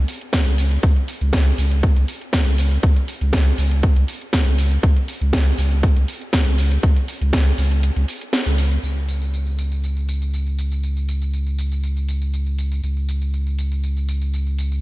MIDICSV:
0, 0, Header, 1, 3, 480
1, 0, Start_track
1, 0, Tempo, 500000
1, 800, Time_signature, 4, 2, 24, 8
1, 14220, End_track
2, 0, Start_track
2, 0, Title_t, "Sub bass"
2, 0, Program_c, 0, 38
2, 446, Note_on_c, 0, 37, 94
2, 750, Note_off_c, 0, 37, 0
2, 799, Note_on_c, 0, 37, 97
2, 891, Note_off_c, 0, 37, 0
2, 1166, Note_on_c, 0, 37, 95
2, 1470, Note_off_c, 0, 37, 0
2, 1520, Note_on_c, 0, 37, 96
2, 1831, Note_off_c, 0, 37, 0
2, 1885, Note_on_c, 0, 37, 99
2, 1968, Note_off_c, 0, 37, 0
2, 2366, Note_on_c, 0, 37, 102
2, 2670, Note_off_c, 0, 37, 0
2, 2719, Note_on_c, 0, 37, 97
2, 2811, Note_off_c, 0, 37, 0
2, 3086, Note_on_c, 0, 37, 91
2, 3390, Note_off_c, 0, 37, 0
2, 3439, Note_on_c, 0, 37, 93
2, 3751, Note_off_c, 0, 37, 0
2, 3805, Note_on_c, 0, 37, 96
2, 3888, Note_off_c, 0, 37, 0
2, 4285, Note_on_c, 0, 37, 104
2, 4590, Note_off_c, 0, 37, 0
2, 4640, Note_on_c, 0, 37, 99
2, 4731, Note_off_c, 0, 37, 0
2, 5006, Note_on_c, 0, 37, 97
2, 5310, Note_off_c, 0, 37, 0
2, 5360, Note_on_c, 0, 37, 96
2, 5671, Note_off_c, 0, 37, 0
2, 5726, Note_on_c, 0, 37, 98
2, 5809, Note_off_c, 0, 37, 0
2, 6206, Note_on_c, 0, 37, 103
2, 6510, Note_off_c, 0, 37, 0
2, 6560, Note_on_c, 0, 37, 98
2, 6651, Note_off_c, 0, 37, 0
2, 6926, Note_on_c, 0, 37, 94
2, 7230, Note_off_c, 0, 37, 0
2, 7280, Note_on_c, 0, 37, 97
2, 7591, Note_off_c, 0, 37, 0
2, 7646, Note_on_c, 0, 37, 98
2, 7728, Note_off_c, 0, 37, 0
2, 8125, Note_on_c, 0, 37, 93
2, 8429, Note_off_c, 0, 37, 0
2, 8479, Note_on_c, 0, 37, 83
2, 12296, Note_off_c, 0, 37, 0
2, 12319, Note_on_c, 0, 37, 83
2, 14220, Note_off_c, 0, 37, 0
2, 14220, End_track
3, 0, Start_track
3, 0, Title_t, "Drums"
3, 79, Note_on_c, 9, 46, 108
3, 175, Note_off_c, 9, 46, 0
3, 205, Note_on_c, 9, 42, 37
3, 301, Note_off_c, 9, 42, 0
3, 316, Note_on_c, 9, 38, 110
3, 319, Note_on_c, 9, 36, 118
3, 319, Note_on_c, 9, 42, 88
3, 412, Note_off_c, 9, 38, 0
3, 415, Note_off_c, 9, 36, 0
3, 415, Note_off_c, 9, 42, 0
3, 445, Note_on_c, 9, 42, 36
3, 541, Note_off_c, 9, 42, 0
3, 558, Note_on_c, 9, 46, 106
3, 654, Note_off_c, 9, 46, 0
3, 685, Note_on_c, 9, 42, 36
3, 781, Note_off_c, 9, 42, 0
3, 798, Note_on_c, 9, 42, 85
3, 799, Note_on_c, 9, 36, 119
3, 894, Note_off_c, 9, 42, 0
3, 895, Note_off_c, 9, 36, 0
3, 925, Note_on_c, 9, 42, 38
3, 1021, Note_off_c, 9, 42, 0
3, 1039, Note_on_c, 9, 46, 106
3, 1135, Note_off_c, 9, 46, 0
3, 1164, Note_on_c, 9, 42, 35
3, 1260, Note_off_c, 9, 42, 0
3, 1275, Note_on_c, 9, 38, 108
3, 1278, Note_on_c, 9, 42, 84
3, 1280, Note_on_c, 9, 36, 112
3, 1371, Note_off_c, 9, 38, 0
3, 1374, Note_off_c, 9, 42, 0
3, 1376, Note_off_c, 9, 36, 0
3, 1405, Note_on_c, 9, 42, 38
3, 1501, Note_off_c, 9, 42, 0
3, 1519, Note_on_c, 9, 46, 104
3, 1615, Note_off_c, 9, 46, 0
3, 1645, Note_on_c, 9, 42, 36
3, 1741, Note_off_c, 9, 42, 0
3, 1759, Note_on_c, 9, 36, 113
3, 1759, Note_on_c, 9, 42, 85
3, 1855, Note_off_c, 9, 36, 0
3, 1855, Note_off_c, 9, 42, 0
3, 1885, Note_on_c, 9, 42, 38
3, 1981, Note_off_c, 9, 42, 0
3, 1999, Note_on_c, 9, 46, 106
3, 2095, Note_off_c, 9, 46, 0
3, 2125, Note_on_c, 9, 42, 36
3, 2221, Note_off_c, 9, 42, 0
3, 2236, Note_on_c, 9, 38, 111
3, 2239, Note_on_c, 9, 42, 86
3, 2240, Note_on_c, 9, 36, 115
3, 2332, Note_off_c, 9, 38, 0
3, 2335, Note_off_c, 9, 42, 0
3, 2336, Note_off_c, 9, 36, 0
3, 2365, Note_on_c, 9, 42, 37
3, 2461, Note_off_c, 9, 42, 0
3, 2479, Note_on_c, 9, 46, 109
3, 2575, Note_off_c, 9, 46, 0
3, 2605, Note_on_c, 9, 42, 37
3, 2701, Note_off_c, 9, 42, 0
3, 2719, Note_on_c, 9, 42, 89
3, 2720, Note_on_c, 9, 36, 116
3, 2815, Note_off_c, 9, 42, 0
3, 2816, Note_off_c, 9, 36, 0
3, 2845, Note_on_c, 9, 42, 41
3, 2941, Note_off_c, 9, 42, 0
3, 2958, Note_on_c, 9, 46, 105
3, 3054, Note_off_c, 9, 46, 0
3, 3084, Note_on_c, 9, 42, 36
3, 3180, Note_off_c, 9, 42, 0
3, 3195, Note_on_c, 9, 38, 108
3, 3198, Note_on_c, 9, 42, 88
3, 3200, Note_on_c, 9, 36, 108
3, 3291, Note_off_c, 9, 38, 0
3, 3294, Note_off_c, 9, 42, 0
3, 3296, Note_off_c, 9, 36, 0
3, 3324, Note_on_c, 9, 42, 37
3, 3420, Note_off_c, 9, 42, 0
3, 3438, Note_on_c, 9, 46, 97
3, 3534, Note_off_c, 9, 46, 0
3, 3565, Note_on_c, 9, 42, 37
3, 3661, Note_off_c, 9, 42, 0
3, 3679, Note_on_c, 9, 42, 87
3, 3680, Note_on_c, 9, 36, 113
3, 3775, Note_off_c, 9, 42, 0
3, 3776, Note_off_c, 9, 36, 0
3, 3805, Note_on_c, 9, 42, 39
3, 3901, Note_off_c, 9, 42, 0
3, 3919, Note_on_c, 9, 46, 105
3, 4015, Note_off_c, 9, 46, 0
3, 4045, Note_on_c, 9, 42, 38
3, 4141, Note_off_c, 9, 42, 0
3, 4156, Note_on_c, 9, 38, 106
3, 4160, Note_on_c, 9, 36, 109
3, 4160, Note_on_c, 9, 42, 87
3, 4252, Note_off_c, 9, 38, 0
3, 4256, Note_off_c, 9, 36, 0
3, 4256, Note_off_c, 9, 42, 0
3, 4286, Note_on_c, 9, 42, 37
3, 4382, Note_off_c, 9, 42, 0
3, 4400, Note_on_c, 9, 46, 100
3, 4496, Note_off_c, 9, 46, 0
3, 4526, Note_on_c, 9, 42, 40
3, 4622, Note_off_c, 9, 42, 0
3, 4640, Note_on_c, 9, 36, 110
3, 4640, Note_on_c, 9, 42, 94
3, 4736, Note_off_c, 9, 36, 0
3, 4736, Note_off_c, 9, 42, 0
3, 4766, Note_on_c, 9, 42, 40
3, 4862, Note_off_c, 9, 42, 0
3, 4879, Note_on_c, 9, 46, 102
3, 4975, Note_off_c, 9, 46, 0
3, 5006, Note_on_c, 9, 42, 39
3, 5102, Note_off_c, 9, 42, 0
3, 5117, Note_on_c, 9, 38, 113
3, 5120, Note_on_c, 9, 36, 109
3, 5120, Note_on_c, 9, 42, 88
3, 5213, Note_off_c, 9, 38, 0
3, 5216, Note_off_c, 9, 36, 0
3, 5216, Note_off_c, 9, 42, 0
3, 5247, Note_on_c, 9, 42, 39
3, 5343, Note_off_c, 9, 42, 0
3, 5360, Note_on_c, 9, 46, 103
3, 5456, Note_off_c, 9, 46, 0
3, 5486, Note_on_c, 9, 42, 38
3, 5582, Note_off_c, 9, 42, 0
3, 5600, Note_on_c, 9, 36, 110
3, 5600, Note_on_c, 9, 42, 90
3, 5696, Note_off_c, 9, 36, 0
3, 5696, Note_off_c, 9, 42, 0
3, 5726, Note_on_c, 9, 42, 40
3, 5822, Note_off_c, 9, 42, 0
3, 5840, Note_on_c, 9, 46, 102
3, 5936, Note_off_c, 9, 46, 0
3, 5966, Note_on_c, 9, 42, 38
3, 6062, Note_off_c, 9, 42, 0
3, 6076, Note_on_c, 9, 38, 116
3, 6079, Note_on_c, 9, 42, 96
3, 6080, Note_on_c, 9, 36, 109
3, 6172, Note_off_c, 9, 38, 0
3, 6175, Note_off_c, 9, 42, 0
3, 6176, Note_off_c, 9, 36, 0
3, 6206, Note_on_c, 9, 42, 39
3, 6302, Note_off_c, 9, 42, 0
3, 6319, Note_on_c, 9, 46, 100
3, 6415, Note_off_c, 9, 46, 0
3, 6445, Note_on_c, 9, 42, 38
3, 6541, Note_off_c, 9, 42, 0
3, 6559, Note_on_c, 9, 42, 91
3, 6560, Note_on_c, 9, 36, 116
3, 6655, Note_off_c, 9, 42, 0
3, 6656, Note_off_c, 9, 36, 0
3, 6685, Note_on_c, 9, 42, 41
3, 6781, Note_off_c, 9, 42, 0
3, 6800, Note_on_c, 9, 46, 101
3, 6896, Note_off_c, 9, 46, 0
3, 6926, Note_on_c, 9, 42, 38
3, 7022, Note_off_c, 9, 42, 0
3, 7036, Note_on_c, 9, 38, 117
3, 7039, Note_on_c, 9, 42, 93
3, 7040, Note_on_c, 9, 36, 112
3, 7132, Note_off_c, 9, 38, 0
3, 7135, Note_off_c, 9, 42, 0
3, 7136, Note_off_c, 9, 36, 0
3, 7166, Note_on_c, 9, 46, 58
3, 7262, Note_off_c, 9, 46, 0
3, 7279, Note_on_c, 9, 46, 102
3, 7375, Note_off_c, 9, 46, 0
3, 7405, Note_on_c, 9, 42, 41
3, 7501, Note_off_c, 9, 42, 0
3, 7519, Note_on_c, 9, 42, 94
3, 7615, Note_off_c, 9, 42, 0
3, 7645, Note_on_c, 9, 42, 41
3, 7741, Note_off_c, 9, 42, 0
3, 7760, Note_on_c, 9, 46, 100
3, 7856, Note_off_c, 9, 46, 0
3, 7886, Note_on_c, 9, 42, 41
3, 7982, Note_off_c, 9, 42, 0
3, 7997, Note_on_c, 9, 38, 121
3, 8000, Note_on_c, 9, 42, 95
3, 8093, Note_off_c, 9, 38, 0
3, 8096, Note_off_c, 9, 42, 0
3, 8126, Note_on_c, 9, 42, 40
3, 8222, Note_off_c, 9, 42, 0
3, 8240, Note_on_c, 9, 46, 105
3, 8336, Note_off_c, 9, 46, 0
3, 8366, Note_on_c, 9, 42, 42
3, 8462, Note_off_c, 9, 42, 0
3, 8483, Note_on_c, 9, 54, 40
3, 8579, Note_off_c, 9, 54, 0
3, 8609, Note_on_c, 9, 54, 22
3, 8705, Note_off_c, 9, 54, 0
3, 8723, Note_on_c, 9, 54, 74
3, 8819, Note_off_c, 9, 54, 0
3, 8849, Note_on_c, 9, 54, 29
3, 8945, Note_off_c, 9, 54, 0
3, 8963, Note_on_c, 9, 54, 40
3, 9059, Note_off_c, 9, 54, 0
3, 9089, Note_on_c, 9, 54, 20
3, 9185, Note_off_c, 9, 54, 0
3, 9203, Note_on_c, 9, 54, 77
3, 9299, Note_off_c, 9, 54, 0
3, 9329, Note_on_c, 9, 54, 31
3, 9425, Note_off_c, 9, 54, 0
3, 9444, Note_on_c, 9, 54, 41
3, 9540, Note_off_c, 9, 54, 0
3, 9569, Note_on_c, 9, 54, 21
3, 9665, Note_off_c, 9, 54, 0
3, 9683, Note_on_c, 9, 54, 74
3, 9779, Note_off_c, 9, 54, 0
3, 9809, Note_on_c, 9, 54, 31
3, 9905, Note_off_c, 9, 54, 0
3, 9923, Note_on_c, 9, 54, 41
3, 10019, Note_off_c, 9, 54, 0
3, 10049, Note_on_c, 9, 54, 20
3, 10145, Note_off_c, 9, 54, 0
3, 10162, Note_on_c, 9, 54, 72
3, 10258, Note_off_c, 9, 54, 0
3, 10288, Note_on_c, 9, 54, 31
3, 10384, Note_off_c, 9, 54, 0
3, 10402, Note_on_c, 9, 54, 39
3, 10498, Note_off_c, 9, 54, 0
3, 10528, Note_on_c, 9, 54, 20
3, 10624, Note_off_c, 9, 54, 0
3, 10642, Note_on_c, 9, 54, 69
3, 10738, Note_off_c, 9, 54, 0
3, 10768, Note_on_c, 9, 54, 28
3, 10864, Note_off_c, 9, 54, 0
3, 10882, Note_on_c, 9, 54, 38
3, 10978, Note_off_c, 9, 54, 0
3, 11008, Note_on_c, 9, 54, 20
3, 11104, Note_off_c, 9, 54, 0
3, 11122, Note_on_c, 9, 54, 70
3, 11218, Note_off_c, 9, 54, 0
3, 11249, Note_on_c, 9, 54, 28
3, 11345, Note_off_c, 9, 54, 0
3, 11363, Note_on_c, 9, 54, 38
3, 11459, Note_off_c, 9, 54, 0
3, 11489, Note_on_c, 9, 54, 20
3, 11585, Note_off_c, 9, 54, 0
3, 11602, Note_on_c, 9, 54, 69
3, 11698, Note_off_c, 9, 54, 0
3, 11729, Note_on_c, 9, 54, 30
3, 11825, Note_off_c, 9, 54, 0
3, 11842, Note_on_c, 9, 54, 39
3, 11938, Note_off_c, 9, 54, 0
3, 11968, Note_on_c, 9, 54, 20
3, 12064, Note_off_c, 9, 54, 0
3, 12082, Note_on_c, 9, 54, 71
3, 12178, Note_off_c, 9, 54, 0
3, 12209, Note_on_c, 9, 54, 30
3, 12305, Note_off_c, 9, 54, 0
3, 12323, Note_on_c, 9, 54, 39
3, 12419, Note_off_c, 9, 54, 0
3, 12449, Note_on_c, 9, 54, 20
3, 12545, Note_off_c, 9, 54, 0
3, 12563, Note_on_c, 9, 54, 70
3, 12659, Note_off_c, 9, 54, 0
3, 12689, Note_on_c, 9, 54, 28
3, 12785, Note_off_c, 9, 54, 0
3, 12803, Note_on_c, 9, 54, 39
3, 12899, Note_off_c, 9, 54, 0
3, 12929, Note_on_c, 9, 54, 20
3, 13025, Note_off_c, 9, 54, 0
3, 13043, Note_on_c, 9, 54, 73
3, 13139, Note_off_c, 9, 54, 0
3, 13169, Note_on_c, 9, 54, 28
3, 13265, Note_off_c, 9, 54, 0
3, 13283, Note_on_c, 9, 54, 39
3, 13379, Note_off_c, 9, 54, 0
3, 13409, Note_on_c, 9, 54, 21
3, 13505, Note_off_c, 9, 54, 0
3, 13522, Note_on_c, 9, 54, 72
3, 13618, Note_off_c, 9, 54, 0
3, 13648, Note_on_c, 9, 54, 28
3, 13744, Note_off_c, 9, 54, 0
3, 13763, Note_on_c, 9, 54, 39
3, 13859, Note_off_c, 9, 54, 0
3, 13889, Note_on_c, 9, 54, 19
3, 13985, Note_off_c, 9, 54, 0
3, 14002, Note_on_c, 9, 54, 72
3, 14098, Note_off_c, 9, 54, 0
3, 14129, Note_on_c, 9, 54, 30
3, 14220, Note_off_c, 9, 54, 0
3, 14220, End_track
0, 0, End_of_file